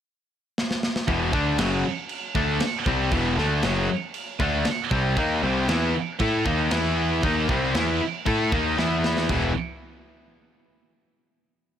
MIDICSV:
0, 0, Header, 1, 6, 480
1, 0, Start_track
1, 0, Key_signature, 1, "minor"
1, 0, Tempo, 510204
1, 1019, Time_signature, 4, 2, 24, 8
1, 4383, Tempo, 515907
1, 11021, End_track
2, 0, Start_track
2, 0, Title_t, "Distorted electric guitar"
2, 0, Program_c, 0, 30
2, 1015, Note_on_c, 0, 40, 86
2, 1023, Note_on_c, 0, 47, 100
2, 1027, Note_on_c, 0, 52, 89
2, 1248, Note_off_c, 0, 47, 0
2, 1249, Note_off_c, 0, 40, 0
2, 1251, Note_off_c, 0, 52, 0
2, 1252, Note_on_c, 0, 50, 90
2, 1255, Note_on_c, 0, 57, 107
2, 1259, Note_on_c, 0, 62, 110
2, 1487, Note_off_c, 0, 50, 0
2, 1487, Note_on_c, 0, 42, 104
2, 1489, Note_off_c, 0, 57, 0
2, 1491, Note_off_c, 0, 62, 0
2, 1492, Note_on_c, 0, 49, 116
2, 1495, Note_on_c, 0, 54, 106
2, 1725, Note_off_c, 0, 42, 0
2, 1727, Note_off_c, 0, 49, 0
2, 1729, Note_off_c, 0, 54, 0
2, 2211, Note_on_c, 0, 50, 81
2, 2212, Note_on_c, 0, 57, 97
2, 2219, Note_on_c, 0, 62, 102
2, 2447, Note_off_c, 0, 50, 0
2, 2448, Note_off_c, 0, 57, 0
2, 2451, Note_off_c, 0, 62, 0
2, 2700, Note_on_c, 0, 48, 88
2, 2704, Note_on_c, 0, 55, 105
2, 2708, Note_on_c, 0, 60, 101
2, 2932, Note_off_c, 0, 48, 0
2, 2933, Note_on_c, 0, 40, 78
2, 2934, Note_off_c, 0, 55, 0
2, 2936, Note_off_c, 0, 60, 0
2, 2940, Note_on_c, 0, 47, 100
2, 2944, Note_on_c, 0, 52, 94
2, 3169, Note_off_c, 0, 40, 0
2, 3172, Note_off_c, 0, 47, 0
2, 3174, Note_off_c, 0, 52, 0
2, 3182, Note_on_c, 0, 50, 94
2, 3186, Note_on_c, 0, 57, 112
2, 3188, Note_on_c, 0, 62, 110
2, 3414, Note_off_c, 0, 50, 0
2, 3416, Note_off_c, 0, 57, 0
2, 3417, Note_off_c, 0, 62, 0
2, 3421, Note_on_c, 0, 42, 99
2, 3427, Note_on_c, 0, 54, 118
2, 3429, Note_on_c, 0, 49, 95
2, 3654, Note_off_c, 0, 42, 0
2, 3657, Note_off_c, 0, 54, 0
2, 3658, Note_off_c, 0, 49, 0
2, 4135, Note_on_c, 0, 50, 97
2, 4143, Note_on_c, 0, 57, 99
2, 4144, Note_on_c, 0, 62, 110
2, 4373, Note_off_c, 0, 50, 0
2, 4377, Note_off_c, 0, 57, 0
2, 4378, Note_off_c, 0, 62, 0
2, 4620, Note_on_c, 0, 48, 104
2, 4624, Note_on_c, 0, 55, 100
2, 4628, Note_on_c, 0, 60, 114
2, 4854, Note_off_c, 0, 48, 0
2, 4856, Note_off_c, 0, 55, 0
2, 4858, Note_off_c, 0, 60, 0
2, 4865, Note_on_c, 0, 51, 91
2, 4865, Note_on_c, 0, 58, 101
2, 4872, Note_on_c, 0, 63, 103
2, 5096, Note_off_c, 0, 51, 0
2, 5096, Note_off_c, 0, 58, 0
2, 5100, Note_off_c, 0, 63, 0
2, 5100, Note_on_c, 0, 48, 106
2, 5100, Note_on_c, 0, 55, 110
2, 5104, Note_on_c, 0, 60, 115
2, 5334, Note_off_c, 0, 48, 0
2, 5334, Note_off_c, 0, 55, 0
2, 5336, Note_off_c, 0, 60, 0
2, 5338, Note_on_c, 0, 52, 98
2, 5340, Note_on_c, 0, 59, 107
2, 5344, Note_on_c, 0, 64, 110
2, 5573, Note_off_c, 0, 52, 0
2, 5574, Note_off_c, 0, 59, 0
2, 5576, Note_off_c, 0, 64, 0
2, 5818, Note_on_c, 0, 57, 94
2, 5823, Note_on_c, 0, 64, 109
2, 5827, Note_on_c, 0, 69, 101
2, 6051, Note_off_c, 0, 57, 0
2, 6052, Note_on_c, 0, 51, 97
2, 6055, Note_off_c, 0, 64, 0
2, 6055, Note_on_c, 0, 58, 104
2, 6057, Note_off_c, 0, 69, 0
2, 6059, Note_on_c, 0, 63, 103
2, 6290, Note_off_c, 0, 51, 0
2, 6291, Note_off_c, 0, 58, 0
2, 6293, Note_off_c, 0, 63, 0
2, 6294, Note_on_c, 0, 52, 89
2, 6300, Note_on_c, 0, 59, 94
2, 6303, Note_on_c, 0, 64, 101
2, 6771, Note_off_c, 0, 52, 0
2, 6774, Note_off_c, 0, 59, 0
2, 6776, Note_off_c, 0, 64, 0
2, 6781, Note_on_c, 0, 51, 91
2, 6785, Note_on_c, 0, 63, 98
2, 6786, Note_on_c, 0, 58, 92
2, 7015, Note_off_c, 0, 51, 0
2, 7017, Note_off_c, 0, 58, 0
2, 7017, Note_off_c, 0, 63, 0
2, 7019, Note_on_c, 0, 48, 103
2, 7030, Note_on_c, 0, 55, 106
2, 7034, Note_on_c, 0, 60, 105
2, 7254, Note_off_c, 0, 48, 0
2, 7259, Note_off_c, 0, 55, 0
2, 7259, Note_on_c, 0, 52, 97
2, 7262, Note_off_c, 0, 60, 0
2, 7263, Note_on_c, 0, 59, 110
2, 7273, Note_on_c, 0, 64, 113
2, 7494, Note_off_c, 0, 52, 0
2, 7496, Note_off_c, 0, 59, 0
2, 7501, Note_off_c, 0, 64, 0
2, 7733, Note_on_c, 0, 57, 91
2, 7733, Note_on_c, 0, 64, 102
2, 7743, Note_on_c, 0, 69, 106
2, 7972, Note_off_c, 0, 57, 0
2, 7972, Note_off_c, 0, 64, 0
2, 7974, Note_on_c, 0, 51, 105
2, 7976, Note_on_c, 0, 58, 94
2, 7977, Note_off_c, 0, 69, 0
2, 7982, Note_on_c, 0, 63, 104
2, 8212, Note_off_c, 0, 51, 0
2, 8213, Note_off_c, 0, 58, 0
2, 8216, Note_off_c, 0, 63, 0
2, 8218, Note_on_c, 0, 52, 87
2, 8223, Note_on_c, 0, 59, 88
2, 8226, Note_on_c, 0, 64, 98
2, 8695, Note_off_c, 0, 52, 0
2, 8697, Note_off_c, 0, 59, 0
2, 8699, Note_off_c, 0, 64, 0
2, 8702, Note_on_c, 0, 40, 86
2, 8711, Note_on_c, 0, 47, 103
2, 8718, Note_on_c, 0, 52, 106
2, 8896, Note_off_c, 0, 40, 0
2, 8900, Note_off_c, 0, 47, 0
2, 8904, Note_off_c, 0, 52, 0
2, 11021, End_track
3, 0, Start_track
3, 0, Title_t, "Picked electric bass"
3, 0, Program_c, 1, 34
3, 1018, Note_on_c, 1, 28, 105
3, 1241, Note_off_c, 1, 28, 0
3, 1256, Note_on_c, 1, 38, 96
3, 1480, Note_off_c, 1, 38, 0
3, 1492, Note_on_c, 1, 30, 89
3, 1718, Note_off_c, 1, 30, 0
3, 2214, Note_on_c, 1, 38, 84
3, 2439, Note_off_c, 1, 38, 0
3, 2697, Note_on_c, 1, 36, 91
3, 2921, Note_off_c, 1, 36, 0
3, 2936, Note_on_c, 1, 28, 100
3, 3161, Note_off_c, 1, 28, 0
3, 3173, Note_on_c, 1, 38, 91
3, 3400, Note_off_c, 1, 38, 0
3, 3417, Note_on_c, 1, 30, 102
3, 3642, Note_off_c, 1, 30, 0
3, 4137, Note_on_c, 1, 38, 97
3, 4364, Note_off_c, 1, 38, 0
3, 4618, Note_on_c, 1, 36, 101
3, 4843, Note_off_c, 1, 36, 0
3, 4862, Note_on_c, 1, 39, 106
3, 5085, Note_off_c, 1, 39, 0
3, 5104, Note_on_c, 1, 36, 100
3, 5326, Note_off_c, 1, 36, 0
3, 5343, Note_on_c, 1, 40, 110
3, 5566, Note_off_c, 1, 40, 0
3, 5820, Note_on_c, 1, 45, 93
3, 6044, Note_off_c, 1, 45, 0
3, 6059, Note_on_c, 1, 39, 88
3, 6283, Note_off_c, 1, 39, 0
3, 6297, Note_on_c, 1, 40, 80
3, 6746, Note_off_c, 1, 40, 0
3, 6777, Note_on_c, 1, 39, 107
3, 7003, Note_off_c, 1, 39, 0
3, 7018, Note_on_c, 1, 36, 106
3, 7244, Note_off_c, 1, 36, 0
3, 7260, Note_on_c, 1, 40, 102
3, 7485, Note_off_c, 1, 40, 0
3, 7743, Note_on_c, 1, 45, 87
3, 7967, Note_off_c, 1, 45, 0
3, 7976, Note_on_c, 1, 39, 87
3, 8204, Note_off_c, 1, 39, 0
3, 8220, Note_on_c, 1, 40, 85
3, 8669, Note_off_c, 1, 40, 0
3, 8700, Note_on_c, 1, 28, 100
3, 8926, Note_off_c, 1, 28, 0
3, 11021, End_track
4, 0, Start_track
4, 0, Title_t, "Muted distorted electric guitar strokes"
4, 2460, Note_on_c, 9, 29, 61
4, 2554, Note_off_c, 9, 29, 0
4, 4381, Note_on_c, 9, 29, 68
4, 4474, Note_off_c, 9, 29, 0
4, 11021, End_track
5, 0, Start_track
5, 0, Title_t, "Muted picked electric bass strokes"
5, 2455, Note_on_c, 9, 29, 35
5, 2550, Note_off_c, 9, 29, 0
5, 4385, Note_on_c, 9, 29, 37
5, 4478, Note_off_c, 9, 29, 0
5, 11021, End_track
6, 0, Start_track
6, 0, Title_t, "Drums"
6, 546, Note_on_c, 9, 38, 81
6, 640, Note_off_c, 9, 38, 0
6, 665, Note_on_c, 9, 38, 81
6, 759, Note_off_c, 9, 38, 0
6, 783, Note_on_c, 9, 38, 88
6, 877, Note_off_c, 9, 38, 0
6, 902, Note_on_c, 9, 38, 93
6, 996, Note_off_c, 9, 38, 0
6, 1013, Note_on_c, 9, 49, 52
6, 1015, Note_on_c, 9, 36, 99
6, 1107, Note_off_c, 9, 49, 0
6, 1110, Note_off_c, 9, 36, 0
6, 1254, Note_on_c, 9, 36, 119
6, 1348, Note_off_c, 9, 36, 0
6, 1488, Note_on_c, 9, 49, 77
6, 1495, Note_on_c, 9, 38, 127
6, 1582, Note_off_c, 9, 49, 0
6, 1589, Note_off_c, 9, 38, 0
6, 1968, Note_on_c, 9, 49, 63
6, 2062, Note_off_c, 9, 49, 0
6, 2212, Note_on_c, 9, 36, 105
6, 2306, Note_off_c, 9, 36, 0
6, 2446, Note_on_c, 9, 49, 75
6, 2453, Note_on_c, 9, 38, 117
6, 2541, Note_off_c, 9, 49, 0
6, 2547, Note_off_c, 9, 38, 0
6, 2692, Note_on_c, 9, 36, 99
6, 2786, Note_off_c, 9, 36, 0
6, 2933, Note_on_c, 9, 36, 105
6, 2933, Note_on_c, 9, 49, 60
6, 3027, Note_off_c, 9, 36, 0
6, 3027, Note_off_c, 9, 49, 0
6, 3178, Note_on_c, 9, 38, 31
6, 3272, Note_off_c, 9, 38, 0
6, 3409, Note_on_c, 9, 49, 64
6, 3416, Note_on_c, 9, 38, 124
6, 3503, Note_off_c, 9, 49, 0
6, 3510, Note_off_c, 9, 38, 0
6, 3894, Note_on_c, 9, 49, 54
6, 3988, Note_off_c, 9, 49, 0
6, 4138, Note_on_c, 9, 36, 109
6, 4232, Note_off_c, 9, 36, 0
6, 4371, Note_on_c, 9, 49, 64
6, 4377, Note_on_c, 9, 38, 110
6, 4464, Note_off_c, 9, 49, 0
6, 4471, Note_off_c, 9, 38, 0
6, 4618, Note_on_c, 9, 36, 105
6, 4711, Note_off_c, 9, 36, 0
6, 4857, Note_on_c, 9, 36, 100
6, 4858, Note_on_c, 9, 49, 53
6, 4950, Note_off_c, 9, 36, 0
6, 4951, Note_off_c, 9, 49, 0
6, 5336, Note_on_c, 9, 49, 61
6, 5343, Note_on_c, 9, 38, 127
6, 5429, Note_off_c, 9, 49, 0
6, 5436, Note_off_c, 9, 38, 0
6, 5810, Note_on_c, 9, 49, 66
6, 5816, Note_on_c, 9, 36, 100
6, 5903, Note_off_c, 9, 49, 0
6, 5909, Note_off_c, 9, 36, 0
6, 6056, Note_on_c, 9, 36, 103
6, 6149, Note_off_c, 9, 36, 0
6, 6289, Note_on_c, 9, 49, 72
6, 6295, Note_on_c, 9, 38, 127
6, 6382, Note_off_c, 9, 49, 0
6, 6388, Note_off_c, 9, 38, 0
6, 6778, Note_on_c, 9, 36, 106
6, 6780, Note_on_c, 9, 49, 59
6, 6871, Note_off_c, 9, 36, 0
6, 6873, Note_off_c, 9, 49, 0
6, 7018, Note_on_c, 9, 36, 106
6, 7111, Note_off_c, 9, 36, 0
6, 7253, Note_on_c, 9, 49, 70
6, 7260, Note_on_c, 9, 38, 115
6, 7346, Note_off_c, 9, 49, 0
6, 7353, Note_off_c, 9, 38, 0
6, 7737, Note_on_c, 9, 36, 94
6, 7737, Note_on_c, 9, 49, 52
6, 7830, Note_off_c, 9, 36, 0
6, 7830, Note_off_c, 9, 49, 0
6, 7978, Note_on_c, 9, 36, 113
6, 8071, Note_off_c, 9, 36, 0
6, 8222, Note_on_c, 9, 38, 73
6, 8315, Note_off_c, 9, 38, 0
6, 8462, Note_on_c, 9, 38, 96
6, 8555, Note_off_c, 9, 38, 0
6, 8580, Note_on_c, 9, 38, 92
6, 8673, Note_off_c, 9, 38, 0
6, 8695, Note_on_c, 9, 43, 93
6, 8695, Note_on_c, 9, 49, 73
6, 8697, Note_on_c, 9, 36, 100
6, 8788, Note_off_c, 9, 43, 0
6, 8788, Note_off_c, 9, 49, 0
6, 8790, Note_off_c, 9, 36, 0
6, 11021, End_track
0, 0, End_of_file